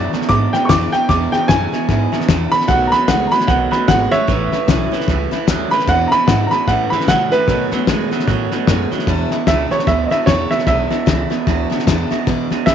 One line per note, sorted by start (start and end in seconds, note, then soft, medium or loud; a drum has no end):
0.00 0.11 E2 medium
0.00 0.13 E2 medium
0.00 0.12 F#2 loud
0.00 0.13 B2 loud
0.00 0.11 C#3 medium
0.00 0.14 E3 medium
0.00 0.14 G#3 medium
0.00 0.13 D4 loud
0.00 0.12 E4 loud
0.00 0.11 D5 loud
0.13 0.28 E2 medium
0.13 0.28 B2 medium
0.13 0.28 E3 soft
0.13 0.29 G#3 medium
0.13 0.30 D4 medium
0.13 0.29 E4 medium
0.13 muted upright bass stroke medium
0.13 snare soft
0.21 snare soft
0.29 0.51 E2 medium
0.29 0.52 G#2 medium
0.29 0.51 B2 loud
0.29 0.53 E3 medium
0.29 0.54 G#3 medium
0.29 0.53 D4 medium
0.29 0.53 E4 medium
0.29 0.52 D6 loud
0.29 kick loud
0.29 snare soft
0.53 0.68 E2 medium
0.53 0.68 B2 medium
0.53 0.69 E3 soft
0.53 0.70 G#3 medium
0.53 0.70 D4 soft
0.53 0.70 E4 medium
0.53 0.69 G5 medium
0.53 snare soft
0.65 0.68 C#6 medium
0.69 0.91 E2 medium
0.69 0.93 E2 medium
0.69 0.92 F2 medium
0.69 0.93 B2 medium
0.69 0.91 C#3 medium
0.69 0.94 E3 medium
0.69 0.93 G#3 medium
0.69 0.93 D4 loud
0.69 0.92 E4 loud
0.69 0.92 D6 loud
0.69 kick medium
0.69 snare loud
0.69 hi-hat pedal medium
0.92 1.08 E2 medium
0.92 1.08 B2 medium
0.92 1.10 E3 soft
0.92 1.10 G#3 medium
0.92 1.10 D4 medium
0.92 1.09 E4 medium
0.92 1.08 G5 loud
0.92 muted upright bass stroke medium
0.92 snare soft
1.09 1.32 E2 medium
1.09 1.31 E2 medium
1.09 1.33 E2 medium
1.09 1.31 B2 medium
1.09 1.34 B2 medium
1.09 1.34 E3 medium
1.09 1.34 G#3 medium
1.09 1.33 D4 medium
1.09 1.32 E4 medium
1.09 1.32 D6 loud
1.09 kick loud
1.09 snare soft
1.32 1.48 E2 medium
1.32 1.48 B2 medium
1.32 1.49 E3 soft
1.32 1.49 G#3 medium
1.32 1.49 D4 medium
1.32 1.49 E4 medium
1.32 1.48 G5 loud
1.32 muted upright bass stroke medium
1.32 snare soft
1.48 1.73 E2 medium
1.48 1.71 E2 medium
1.48 1.72 F#2 loud
1.48 1.73 B2 medium
1.48 1.71 C#3 loud
1.48 1.73 E3 medium
1.48 1.73 G#3 medium
1.48 1.72 D4 medium
1.48 1.71 E4 medium
1.48 2.26 G#5 loud
1.48 kick medium
1.48 snare loud
1.48 hi-hat pedal medium
1.72 1.88 E2 medium
1.72 1.88 B2 medium
1.72 1.87 E3 soft
1.72 1.89 G#3 soft
1.72 1.89 D4 medium
1.72 1.89 E4 medium
1.72 muted upright bass stroke medium
1.72 snare soft
1.89 2.10 E2 medium
1.89 2.12 G#2 medium
1.89 2.11 B2 loud
1.89 2.13 E3 medium
1.89 2.12 G#3 medium
1.89 2.11 D4 medium
1.89 2.11 E4 medium
1.89 kick loud
1.89 snare soft
2.12 2.27 E2 medium
2.12 2.27 B2 medium
2.12 2.28 E3 medium
2.12 2.28 G#3 medium
2.12 2.29 D4 medium
2.12 2.29 E4 medium
2.12 muted upright bass stroke medium
2.12 snare soft
2.21 snare soft
2.28 2.50 E2 medium
2.28 2.52 E2 medium
2.28 2.53 B2 loud
2.28 2.50 C#3 loud
2.28 2.53 E3 loud
2.28 2.52 G#3 loud
2.28 2.52 D4 loud
2.28 2.51 E4 loud
2.28 kick medium
2.28 snare loud
2.28 hi-hat pedal medium
2.52 2.67 E2 medium
2.52 2.67 B2 medium
2.52 2.68 E3 soft
2.52 2.68 G#3 medium
2.52 2.69 D4 medium
2.52 2.68 E4 medium
2.52 2.68 B5 loud
2.52 snare soft
2.61 snare soft
2.68 2.92 B1 medium
2.68 2.92 B2 medium
2.68 2.90 B2 medium
2.68 2.92 D#3 medium
2.68 2.90 F#3 medium
2.68 2.92 A3 medium
2.68 2.92 B3 medium
2.68 2.90 F#4 medium
2.68 2.91 F#5 loud
2.68 kick loud
2.68 snare soft
2.87 2.90 A#5 medium
2.91 3.07 B2 medium
2.91 3.07 F#3 medium
2.91 3.08 A3 medium
2.91 3.08 B3 soft
2.91 3.08 F#4 medium
2.91 3.08 B5 loud
2.91 snare soft
3.08 3.31 C#2 loud
3.08 3.30 B2 medium
3.08 3.32 B2 medium
3.08 3.32 D#3 medium
3.08 3.30 G#3 loud
3.08 3.32 A3 medium
3.08 3.32 B3 medium
3.08 3.30 F#4 medium
3.08 3.31 F#5 medium
3.08 kick loud
3.08 snare loud
3.08 hi-hat pedal medium
3.27 3.30 A#5 medium
3.31 3.46 B2 medium
3.31 3.47 F#3 medium
3.31 3.47 A3 soft
3.31 3.48 B3 medium
3.31 3.48 F#4 medium
3.31 3.48 B5 loud
3.31 snare soft
3.40 snare soft
3.47 3.71 B1 medium
3.47 3.69 B2 medium
3.47 3.72 D#3 medium
3.47 3.70 F#3 medium
3.47 3.72 A3 medium
3.47 3.71 B3 medium
3.47 3.70 F#4 medium
3.47 3.71 F#5 medium
3.47 kick loud
3.47 snare soft
3.71 3.86 B2 medium
3.71 3.86 F#3 medium
3.71 3.87 A3 soft
3.71 3.88 B3 medium
3.71 3.88 F#4 medium
3.71 3.88 B5 medium
3.71 snare soft
3.88 4.11 G#1 medium
3.88 4.09 B2 medium
3.88 4.12 B2 medium
3.88 4.12 D#3 medium
3.88 4.10 G#3 medium
3.88 4.12 A3 medium
3.88 4.12 B3 medium
3.88 4.10 F#4 loud
3.88 4.11 F#5 loud
3.88 kick medium
3.88 snare loud
3.88 hi-hat pedal medium
4.11 4.27 B2 medium
4.11 4.27 F#3 medium
4.11 4.28 A3 medium
4.11 4.29 B3 medium
4.11 4.28 F#4 medium
4.11 5.28 C#5 loud
4.11 5.28 E5 loud
4.11 muted upright bass stroke medium
4.11 snare soft
4.27 4.51 A1 medium
4.27 4.52 A2 medium
4.27 4.50 A2 medium
4.27 4.52 E3 medium
4.27 4.50 E3 loud
4.27 4.52 G3 medium
4.27 4.52 C#4 loud
4.27 4.51 E4 medium
4.27 kick loud
4.27 snare soft
4.52 4.67 A2 medium
4.52 4.67 E3 medium
4.52 4.68 G3 soft
4.52 4.68 C#4 medium
4.52 4.68 E4 medium
4.52 muted upright bass stroke medium
4.52 snare soft
4.68 4.91 B1 loud
4.68 4.92 A2 medium
4.68 4.90 A2 medium
4.68 4.92 E3 loud
4.68 4.90 F#3 medium
4.68 4.92 G3 medium
4.68 4.92 C#4 loud
4.68 4.90 E4 loud
4.68 kick medium
4.68 snare loud
4.68 hi-hat pedal medium
4.91 5.07 A2 medium
4.91 5.07 E3 medium
4.91 5.08 G3 medium
4.91 5.08 C#4 medium
4.91 5.08 E4 medium
4.91 snare soft
5.00 snare soft
5.08 5.31 C#2 medium
5.08 5.30 A2 medium
5.08 5.32 E3 medium
5.08 5.30 E3 loud
5.08 5.32 G3 medium
5.08 5.31 C#4 medium
5.08 5.30 E4 medium
5.08 kick loud
5.08 snare soft
5.31 5.47 A2 medium
5.31 5.47 E3 medium
5.31 5.47 G3 soft
5.31 5.47 C#4 medium
5.31 5.48 E4 medium
5.31 snare soft
5.47 5.70 D#2 loud
5.47 5.71 A2 loud
5.47 5.70 A2 medium
5.47 5.72 E3 medium
5.47 5.70 F#3 loud
5.47 5.72 G3 loud
5.47 5.71 C#4 loud
5.47 5.69 E4 loud
5.47 kick medium
5.47 snare loud
5.47 hi-hat pedal medium
5.71 5.87 A2 medium
5.71 5.87 E3 medium
5.71 5.88 G3 medium
5.71 5.88 C#4 medium
5.71 5.87 E4 medium
5.71 5.87 B5 loud
5.71 snare soft
5.79 snare soft
5.87 6.11 E2 medium
5.87 6.10 E2 medium
5.87 6.11 B2 medium
5.87 6.10 B2 loud
5.87 6.12 E3 medium
5.87 6.12 G#3 medium
5.87 6.11 D4 medium
5.87 6.10 E4 medium
5.87 6.11 F#5 loud
5.87 kick loud
5.87 snare soft
6.08 6.28 E4 medium
6.08 6.10 A#5 medium
6.08 snare soft
6.12 6.27 E2 medium
6.12 6.27 B2 medium
6.12 6.27 E3 medium
6.12 6.27 G#3 medium
6.12 6.28 D4 medium
6.12 6.28 B5 loud
6.12 muted upright bass stroke medium
6.27 6.51 E2 medium
6.27 6.49 E2 medium
6.27 6.51 G#2 loud
6.27 6.52 B2 medium
6.27 6.50 C#3 loud
6.27 6.52 E3 medium
6.27 6.52 G#3 medium
6.27 6.51 D4 medium
6.27 6.50 E4 medium
6.27 6.50 F#5 medium
6.27 kick medium
6.27 snare loud
6.27 hi-hat pedal medium
6.46 6.49 A#5 medium
6.51 6.67 E2 medium
6.51 6.67 B2 medium
6.51 6.66 E3 medium
6.51 6.69 G#3 medium
6.51 6.68 D4 medium
6.51 6.68 E4 medium
6.51 6.67 B5 loud
6.51 snare soft
6.67 6.91 A2 medium
6.67 6.90 A2 loud
6.67 6.91 E3 medium
6.67 6.90 E3 medium
6.67 6.92 G3 medium
6.67 6.92 C#4 medium
6.67 6.91 E4 medium
6.67 6.91 F#5 medium
6.67 kick loud
6.67 snare soft
6.90 7.07 A2 medium
6.90 7.07 E3 loud
6.90 7.08 C#4 medium
6.90 7.08 E4 medium
6.90 7.07 B5 medium
6.90 muted upright bass stroke medium
6.90 snare soft
6.95 7.08 G3 medium
7.00 snare soft
7.08 7.32 A2 medium
7.08 7.30 A2 medium
7.08 7.30 C#3 loud
7.08 7.32 E3 medium
7.08 7.30 F#3 loud
7.08 7.32 G3 medium
7.08 7.32 C#4 medium
7.08 7.31 E4 medium
7.08 7.31 F#5 loud
7.08 kick medium
7.08 snare loud
7.08 hi-hat pedal loud
7.32 7.46 A2 medium
7.32 7.47 E3 medium
7.32 7.49 G3 soft
7.32 7.49 C#4 medium
7.32 7.48 E4 medium
7.32 8.48 B4 loud
7.32 muted upright bass stroke soft
7.32 snare soft
7.48 7.71 B2 medium
7.48 7.72 B2 medium
7.48 7.69 B2 medium
7.48 7.72 D#3 medium
7.48 7.70 F#3 loud
7.48 7.72 A3 medium
7.48 7.72 B3 medium
7.48 7.70 F#4 medium
7.48 kick loud
7.48 snare soft
7.71 7.86 B2 medium
7.71 7.87 F#3 medium
7.71 7.88 A3 soft
7.71 7.88 B3 medium
7.71 7.88 F#4 medium
7.71 muted upright bass stroke medium
7.71 snare soft
7.87 8.10 F#2 loud
7.87 8.11 B2 medium
7.87 8.10 B2 medium
7.87 8.12 D#3 medium
7.87 8.10 G#3 loud
7.87 8.12 A3 loud
7.87 8.11 B3 medium
7.87 8.10 F#4 loud
7.87 kick loud
7.87 snare loud
7.87 hi-hat pedal medium
8.11 8.26 B2 medium
8.11 8.27 F#3 medium
8.11 8.27 A3 medium
8.11 8.28 B3 medium
8.11 8.28 F#4 medium
8.11 muted upright bass stroke soft
8.11 snare soft
8.19 snare soft
8.27 8.50 A2 medium
8.27 8.49 B2 medium
8.27 8.51 D#3 medium
8.27 8.49 F#3 loud
8.27 8.52 A3 medium
8.27 8.52 B3 medium
8.27 8.50 F#4 medium
8.27 kick loud
8.27 snare soft
8.51 8.66 B2 medium
8.51 8.66 F#3 medium
8.51 8.68 A3 medium
8.51 8.68 B3 medium
8.51 8.68 F#4 medium
8.51 snare soft
8.67 8.90 F#2 medium
8.67 8.89 B2 medium
8.67 8.92 B2 loud
8.67 8.92 D#3 medium
8.67 8.89 G#3 loud
8.67 8.92 A3 loud
8.67 8.91 B3 loud
8.67 8.90 F#4 loud
8.67 kick medium
8.67 snare loud
8.67 hi-hat pedal loud
8.91 9.06 B2 medium
8.91 9.06 F#3 medium
8.91 9.08 A3 medium
8.91 9.08 B3 medium
8.91 9.08 F#4 medium
8.91 muted upright bass stroke medium
8.91 snare soft
8.99 snare soft
9.07 9.30 E2 medium
9.07 9.31 E2 medium
9.07 9.29 E2 medium
9.07 9.31 B2 medium
9.07 9.29 B2 medium
9.07 9.32 E3 medium
9.07 9.32 G#3 medium
9.07 9.31 D4 loud
9.07 9.31 E4 loud
9.07 kick loud
9.07 snare soft
9.31 9.46 E2 medium
9.31 9.46 B2 medium
9.31 9.47 E3 soft
9.31 9.47 G#3 medium
9.31 9.48 D4 medium
9.31 9.48 E4 medium
9.31 snare soft
9.47 9.70 C#2 loud
9.47 9.69 E2 medium
9.47 9.71 E2 medium
9.47 9.71 B2 medium
9.47 9.69 C#3 loud
9.47 9.72 E3 medium
9.47 9.72 G#3 medium
9.47 9.71 D4 medium
9.47 9.70 E4 medium
9.47 9.70 E5 medium
9.47 kick medium
9.47 snare loud
9.47 hi-hat pedal medium
9.71 9.86 E2 medium
9.71 9.86 B2 medium
9.71 9.86 E3 medium
9.71 9.87 G#3 medium
9.71 9.87 D4 medium
9.71 9.87 E4 medium
9.71 9.87 C#5 medium
9.71 snare soft
9.79 snare soft
9.87 10.10 D2 medium
9.87 10.09 E2 medium
9.87 10.09 B2 medium
9.87 10.11 E3 medium
9.87 10.11 G#3 medium
9.87 10.10 D4 medium
9.87 10.09 E4 medium
9.87 10.10 E5 medium
9.87 kick loud
9.87 snare soft
10.06 10.09 D#5 medium
10.11 10.26 E2 medium
10.11 10.26 B2 medium
10.11 10.26 E3 soft
10.11 10.27 G#3 soft
10.11 10.28 D4 medium
10.11 10.27 E4 soft
10.11 10.27 E5 medium
10.11 muted upright bass stroke medium
10.11 snare soft
10.26 10.50 E2 loud
10.26 10.51 E2 medium
10.26 10.49 E2 medium
10.26 10.51 B2 medium
10.26 10.49 C#3 medium
10.26 10.51 E3 medium
10.26 10.51 G#3 medium
10.26 10.51 D4 loud
10.26 10.49 E4 loud
10.26 10.50 C#5 medium
10.26 kick medium
10.26 snare loud
10.26 hi-hat pedal medium
10.50 10.65 E2 medium
10.50 10.66 B2 medium
10.50 10.66 E3 medium
10.50 10.67 G#3 medium
10.50 10.67 D4 medium
10.50 10.67 E4 medium
10.50 10.66 E5 loud
10.50 snare soft
10.59 snare soft
10.66 10.90 B1 medium
10.66 10.88 E2 medium
10.66 10.91 E2 medium
10.66 10.88 B2 medium
10.66 10.91 B2 medium
10.66 10.91 E3 medium
10.66 10.91 G#3 medium
10.66 10.90 D4 medium
10.66 10.89 E4 medium
10.66 11.84 E5 loud
10.66 kick loud
10.66 snare soft
10.90 11.05 E2 medium
10.90 11.06 B2 medium
10.90 11.06 E3 soft
10.90 11.06 G#3 medium
10.90 11.06 D4 medium
10.90 11.06 E4 medium
10.90 muted upright bass stroke medium
10.90 snare soft
11.06 11.30 C#2 loud
11.06 11.30 E2 medium
11.06 11.29 E2 loud
11.06 11.31 B2 medium
11.06 11.29 C#3 medium
11.06 11.31 E3 medium
11.06 11.30 G#3 medium
11.06 11.29 D4 medium
11.06 11.29 E4 medium
11.06 kick medium
11.06 snare loud
11.06 hi-hat pedal medium
11.30 11.45 E2 medium
11.30 11.46 B2 medium
11.30 11.46 E3 medium
11.30 11.47 G#3 medium
11.30 11.47 D4 medium
11.30 11.47 E4 medium
11.30 snare soft
11.47 11.70 D2 medium
11.47 11.68 E2 medium
11.47 11.69 B2 loud
11.47 11.71 E3 medium
11.47 11.71 G#3 medium
11.47 11.69 D4 medium
11.47 11.68 E4 medium
11.47 kick loud
11.47 snare soft
11.70 11.86 E2 medium
11.70 11.86 B2 medium
11.70 11.86 E3 medium
11.70 11.87 G#3 medium
11.70 11.87 D4 medium
11.70 11.87 E4 medium
11.70 snare soft
11.79 snare soft
11.87 12.11 E2 medium
11.87 12.10 E2 medium
11.87 12.09 E2 medium
11.87 12.11 B2 loud
11.87 12.09 C#3 medium
11.87 12.11 E3 medium
11.87 12.11 G#3 loud
11.87 12.10 D4 loud
11.87 12.09 E4 loud
11.87 kick medium
11.87 snare loud
11.87 hi-hat pedal medium
12.11 12.26 E2 medium
12.11 12.26 B2 medium
12.11 12.26 E3 medium
12.11 12.27 G#3 medium
12.11 12.27 D4 medium
12.11 12.27 E4 medium
12.11 muted upright bass stroke medium
12.11 snare soft
12.27 12.51 E2 medium
12.27 12.49 E2 medium
12.27 12.51 B2 medium
12.27 12.50 B2 medium
12.27 12.49 B2 medium
12.27 12.51 E3 loud
12.27 12.51 G#3 medium
12.27 12.51 D4 loud
12.27 12.49 E4 loud
12.27 kick loud
12.27 snare soft
12.50 12.66 E2 medium
12.50 12.66 B2 medium
12.50 12.67 E3 medium
12.50 12.68 G#3 medium
12.50 12.68 D4 medium
12.50 12.67 E4 medium
12.50 muted upright bass stroke medium
12.50 snare soft
12.66 12.75 E2 medium
12.66 12.75 A2 loud
12.66 12.75 B2 medium
12.66 12.75 C#3 loud
12.66 12.75 E3 medium
12.66 12.75 G#3 medium
12.66 12.75 D4 medium
12.66 12.75 E4 medium
12.66 12.75 E5 loud
12.66 kick medium
12.66 snare loud
12.66 hi-hat pedal medium